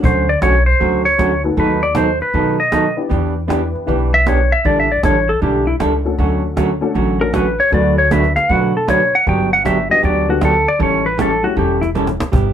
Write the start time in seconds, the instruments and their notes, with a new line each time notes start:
0.02 upright bass D2, hollow-body jazz guitar D3 F#3 A3 C#4 F#4, electric slide guitar C5, cajon bass
0.29 electric slide guitar D5
0.41 upright bass B1, hollow-body jazz guitar D3 F#3 A3 C#4 F#4, electric slide guitar C#5, cajon bass, cajon slap
0.66 electric slide guitar C5, cajon slap
0.80 upright bass C#2, hollow-body jazz guitar D3 F#3 A3 C#4 F#4, cajon bass, cajon slap
1.05 electric slide guitar C#5
1.18 upright bass D2, hollow-body jazz guitar D3 F#3 A3 C#4 F#4, cajon bass, cajon slap
1.43 honky-tonk piano A3 B3 D#4 F#4 A4, cajon slap
1.57 upright bass D#2, hollow-body jazz guitar D#3 F#3 B3 D#4 A4, honky-tonk piano A3 B3 D#4 F#4 A4, electric slide guitar B4, cajon bass, cajon slap
1.83 electric slide guitar D5
1.95 hollow-body jazz guitar D#3 F#3 B3 D#4 A4, electric slide guitar C5, cajon bass, cajon slap
2.21 electric slide guitar B4, cajon slap
2.33 upright bass B2, hollow-body jazz guitar D#3 F#3 B3 D#4 A4, cajon bass, cajon slap
2.60 electric slide guitar D#5
2.72 hollow-body jazz guitar D#3 F#3 B3 D#4 A4, cajon bass, cajon slap
2.96 honky-tonk piano B3 D4 E4 G4 D5
3.09 upright bass E2, hollow-body jazz guitar E3 B3 D4 G4, cajon bass, cajon slap
3.47 hollow-body jazz guitar E3 B3 D4 G4, honky-tonk piano B3 D4 E4 G4 B4, cajon bass, cajon slap
3.76 cajon slap
3.86 upright bass B1, hollow-body jazz guitar E3 B3 D4 G4, honky-tonk piano B3 D4 E4 G4 B4, cajon bass, cajon slap
4.14 electric slide guitar E5
4.26 hollow-body jazz guitar E3 B3 D4 G4, electric slide guitar C#5, cajon bass, cajon slap
4.52 electric slide guitar E5, cajon slap
4.65 upright bass A1, hollow-body jazz guitar D3 G3 D4 E4 A4, electric slide guitar D5, cajon bass, cajon slap
4.80 electric slide guitar E5
4.92 electric slide guitar D5
5.03 upright bass A1, hollow-body jazz guitar D3 G3 D4 E4 A4, electric slide guitar C#5, cajon bass, cajon slap
5.29 electric slide guitar A4, cajon slap
5.41 upright bass B1, hollow-body jazz guitar D3 G3 D4 E4 A4, electric slide guitar G4, cajon bass, cajon slap
5.67 electric slide guitar E4
5.80 upright bass C#2, hollow-body jazz guitar D3 G3 D4 E4 A4, cajon bass, cajon slap
6.04 honky-tonk piano A3 C#4 D4 F#4 A4, cajon slap
6.18 upright bass D2, hollow-body jazz guitar D3 F#3 A3 C#4 F#4, cajon bass, cajon slap
6.56 hollow-body jazz guitar D3 F#3 A3 C#4 F#4, cajon bass, cajon slap
6.81 honky-tonk piano A3 C#4 D4 F#4 A4, cajon slap
6.94 upright bass A1, hollow-body jazz guitar D3 F#3 A3 C#4 F#4, cajon bass, cajon slap
7.19 honky-tonk piano A3 C#4 D4 F#4 A4, electric slide guitar A#4
7.33 hollow-body jazz guitar D3 F#3 A3 C#4 F#4, electric slide guitar B4, cajon bass, cajon slap
7.60 electric slide guitar C#5
7.70 upright bass D2, hollow-body jazz guitar D3 F#3 A3 D4 F#4 B4, honky-tonk piano A3 B3 D4 F#4 A4, cajon bass, cajon slap
7.74 electric slide guitar D5
7.98 electric slide guitar C#5
8.11 hollow-body jazz guitar D3 F#3 A3 D4 F#4 B4, electric slide guitar E5, cajon bass, cajon slap
8.24 cajon slap
8.36 electric slide guitar F5, cajon slap
8.50 upright bass B2, hollow-body jazz guitar D3 F#3 A3 D4 F#4 B4, electric slide guitar F#5, cajon bass, cajon slap
8.77 electric slide guitar A4
8.87 hollow-body jazz guitar D3 F#3 A3 D4 F#4 B4, electric slide guitar C#5, cajon bass, cajon slap
9.15 electric slide guitar F#5
9.27 upright bass G1, hollow-body jazz guitar D3 F#3 B3 D4 G4, electric slide guitar G5, cajon bass, cajon slap
9.53 electric slide guitar F#5
9.65 hollow-body jazz guitar D3 F#3 B3 D4 G4, electric slide guitar E5, cajon bass, cajon slap
9.90 honky-tonk piano G3 B3 D4 F#4 G4, electric slide guitar D#5
10.02 upright bass D2, hollow-body jazz guitar D3 F#3 B3 D4 G4, electric slide guitar D5, cajon bass, cajon slap
10.28 honky-tonk piano G3 B3 D4 F#4 A4, electric slide guitar F#4
10.41 hollow-body jazz guitar D3 F#3 B3 D4 G4, electric slide guitar A4, cajon bass, cajon slap
10.67 electric slide guitar D5, cajon slap
10.79 upright bass A1, hollow-body jazz guitar E3 G3 C#4 E4 A4, electric slide guitar C#5, cajon bass, cajon slap
11.06 electric slide guitar B4
11.18 hollow-body jazz guitar E3 G3 C#4 E4 A4, cajon bass, cajon slap
11.22 electric slide guitar A4
11.43 honky-tonk piano G3 A3 C#4 E4 G4, electric slide guitar F#4
11.56 upright bass E1, hollow-body jazz guitar E3 G3 C#4 E4 A4, electric slide guitar G4, cajon bass, cajon slap
11.81 electric slide guitar E4, cajon slap
11.95 hollow-body jazz guitar E3 G3 C#4 E4 A4, cajon slap
12.07 cajon slap
12.20 cajon slap
12.32 upright bass G1, hollow-body jazz guitar G3 B3 E4 G4, cajon bass